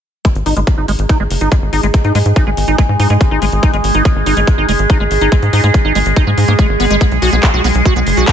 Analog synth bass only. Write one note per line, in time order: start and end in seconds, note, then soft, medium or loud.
0.35 0.43 G#1 medium
0.46 0.53 G#1 loud
0.57 0.64 G#1 medium
0.78 0.85 G#1 medium
0.88 0.95 G#1 loud
0.99 1.06 G#1 medium
1.20 1.27 G#1 medium
1.30 1.38 F#1 loud
1.41 1.48 G#1 medium
1.62 1.69 G#1 medium
1.73 1.80 G#1 loud
1.83 1.90 G#1 medium
2.04 2.12 G#2 medium
2.15 2.22 G#2 loud
2.26 2.33 G#2 medium
2.47 2.54 G#1 medium
2.57 2.64 G#1 loud
2.68 2.75 G#1 medium
2.89 2.96 G#2 medium
3.00 3.07 G#2 loud
3.10 3.17 G#2 medium
3.31 3.38 G#1 medium
3.42 3.49 G#1 loud
3.52 3.59 G#1 medium
3.73 3.81 G#1 medium
3.84 3.91 G#1 loud
3.95 4.02 G#1 loud
4.16 4.23 G#1 medium
4.26 4.33 G#1 loud
4.37 4.44 G#1 loud
4.58 4.65 G#1 medium
4.69 4.76 F#1 loud
4.79 4.86 G#1 medium
5.00 5.07 G#1 medium
5.11 5.18 G#1 medium
5.21 5.28 G#1 medium
5.42 5.50 G#2 medium
5.53 5.60 G#2 loud
5.64 5.71 G#2 medium
5.85 5.92 G#1 medium
5.95 6.02 G#1 loud
6.06 6.13 G#1 loud
6.27 6.34 G#2 medium
6.38 6.45 G#2 loud
6.48 6.55 G#2 medium
6.69 6.76 G#1 medium
6.80 6.87 G#1 loud
6.90 6.98 G#1 medium
7.12 7.19 B1 medium
7.22 7.29 B1 loud
7.33 7.40 B1 medium
7.54 7.61 B1 medium
7.64 7.71 B1 medium
7.75 7.82 B1 loud
7.96 8.03 B1 medium
8.07 8.14 F#1 loud
8.17 8.24 B1 medium